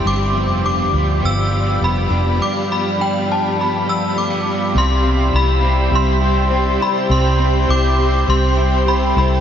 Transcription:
X:1
M:4/4
L:1/16
Q:1/4=102
K:C
V:1 name="Synth bell"
d'4 d'4 e'4 b4 | d'2 b2 g2 a2 b2 e'2 d'4 | c'4 b4 c'6 b2 | c'4 d'4 c'4 b2 b2 |]
V:2 name="Ambient pad"
[Gdfb]16- | [Gdfb]16 | [Gceg]16- | [Gceg]16 |]
V:3 name="Synth texture"
z16 | z16 | e8 d8- | d6 z6 A4 |]
V:4 name="Clean electric guitar"
G,,2 F,2 D2 F,2 B,2 F,2 B,2 D2 | G,,2 F,2 D2 F,2 B,2 F,2 A, B, D2 | C,2 C2 E2 C2 G,2 E2 C2 E2 | C,2 C2 E2 C2 G,2 E2 C2 E2 |]
V:5 name="Overdriven electric guitar"
[G,,D,F,B,F]2 [F,B,F]2 [D,F,B,F]2 [F,B,F]2 [G,,D,F,B,F]2 [F,B,F]2 [D,F,B,F]2 [F,B,F]2 | [G,,D,F,B,F]2 [F,B,F]2 [D,F,B,F]2 [F,B,F]2 [G,,D,F,B,F]2 [F,B,F]2 [D,F,B,F]2 [F,B,F]2 | [C,G,CE]2 [G,CE]2 [C,G,CE]2 [G,CE]2 [C,G,CE]2 [G,CE]2 [C,G,CE]2 [G,CE]2 | [C,G,CE]2 [G,CE]2 [C,G,CE]2 [G,CE]2 [C,G,CE]2 [G,CE]2 [C,G,CE]2 [G,CE]2 |]
V:6 name="Fingered electric bass" clef=bass
G,,,3 F,,,3 D,,2 G,,,4 F,,,2 F,,,2 | z16 | C,,4 C,,4 C,,6 z2 | C,,4 C,,4 C,,6 C,,2 |]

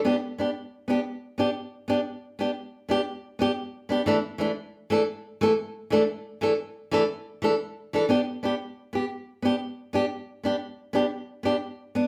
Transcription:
X:1
M:12/8
L:1/8
Q:3/8=119
K:G
V:1 name="Nylon-string guitar"
[B,DG] z [B,DG] z2 [B,DG] z2 [B,DG] z2 [B,DG] | z2 [B,DG] z2 [B,DG] z2 [B,DG] z2 [B,DG] | [E,A,DA] z [E,A,D] z2 [E,A,DA] z2 [E,A,A] z2 [E,A,DA] | z2 [E,A,DA] z2 [E,A,DA] z2 [E,A,DA] z2 [E,DA] |
[B,DG] z [B,DG] z2 [B,G] z2 [B,DG] z2 [B,DG] | z2 [B,DG] z2 [B,DG] z2 [B,DG] z2 [B,D] |]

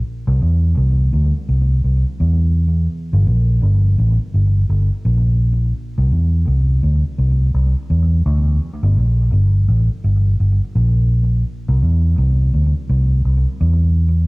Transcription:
X:1
M:4/4
L:1/16
Q:"Swing 16ths" 1/4=84
K:Cmix
V:1 name="Fingered electric bass" clef=bass
z C,, E,,2 C,,2 D,, z C,,2 C,, z E,,4 | z G,,, B,,,2 G,,,2 A,,, z G,,,2 G,,, z B,,,4 | z C,, E,,2 C,,2 D,, z C,,2 C,, z E,,2 D,,2 | z G,,, B,,,2 G,,,2 A,,, z G,,,2 G,,, z B,,,4 |
z C,, E,,2 C,,2 D,, z C,,2 C,, z E,,4 |]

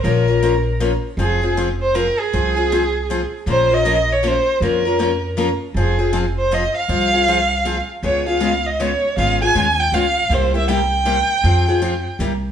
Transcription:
X:1
M:3/4
L:1/16
Q:"Swing" 1/4=158
K:Fm
V:1 name="Violin"
B8 z4 | A4 z2 c2 B2 A2- | A8- A2 z2 | c2 e4 d2 c4 |
B8 z4 | A4 z2 c2 e2 f2- | f8- f2 z2 | d2 f4 e2 d4 |
f2 a4 g2 f4 | c2 =e2 g8- | g8 z4 |]
V:2 name="Steel-string acoustic guitar"
[F,B,DFB]2 [DFB]2 [F,B,DFB] z3 [F,B,DFB] z3 | [F,CFA]2 [CFA]2 [F,CFA] z3 [F,CFA] z3 | [F,CFA]2 [CFA]2 [F,CFA] z3 [F,CFA] z3 | [F,B,DFB]2 [DFB]2 [F,B,DFB] z3 [F,B,DFB] z3 |
[F,B,DFB]2 [DFB]2 [F,B,DFB] z3 [F,B,DFB] z3 | [F,CFA]2 [CFA]2 [F,CFA] z3 [F,CFA] z3 | [F,CFA]2 [CFA]2 [F,CFA] z3 [F,CFA] z3 | [D,A,_CFA]2 [CFA]2 [D,A,CFA] z3 [D,A,CFA] z3 |
[D,A,_CFA]2 [CFA]2 [D,A,CFA] z3 [D,A,CFA] z3 | [C,G,B,=EG]2 [B,EG]2 [C,G,B,EG] z3 [C,G,B,EG] z3 | [F,CFA]2 [CFA]2 [F,CFA] z3 [C,G,B,=EG] z3 |]
V:3 name="Upright bass" clef=bass
B,,,12 | F,,,12 | C,,12 | B,,,12 |
F,,12 | F,,,12 | C,,12 | D,,12 |
A,,,4 E,,4 D,,4 | C,,12 | F,,8 C,,4 |]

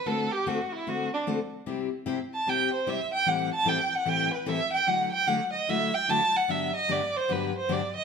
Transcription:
X:1
M:4/4
L:1/8
Q:"Swing" 1/4=150
K:Dmix
V:1 name="Violin"
A G F E F D z2 | z3 a g c e g | f a g f g B e g | f g f _e =e g a f |
e _e d c B c d e |]
V:2 name="Steel-string acoustic guitar"
[D,A,CFA] z [D,A,CFA] z [D,A,CFA] z [D,A,CFA] z | [C,G,CEG] z [C,G,CEG] z [C,G,CEG] z [C,G,CEG] z | [A,,E,G,CEA] z [A,,E,G,CEA] z [A,,E,G,CEA] z [A,,E,G,CEA] z | [D,F,A,EF] z [D,F,A,EF] z [D,F,A,EF] z [D,F,A,EF] z |
[G,,D,F,B,DG] z [G,,D,F,B,DG] z [G,,D,F,B,DG] z [G,,D,F,B,DG] z |]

